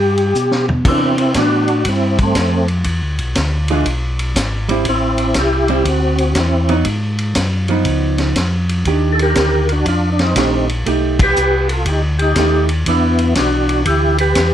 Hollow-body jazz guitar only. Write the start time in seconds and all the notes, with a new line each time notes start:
0.87 E3 B3 D4
1.37 E3 B3 D4
3.70 E3 G#3 D4 F4
4.69 G3 C4 E4
5.69 G3 C4 E4
6.69 F#3 B3 D#4
7.69 F3 B3 D#4
8.87 D#3 D4 G4
10.37 D#3 A3 D4 G4
10.86 A3 D#4 G4
12.38 A3 D#4 G4
12.88 E3 B3 D4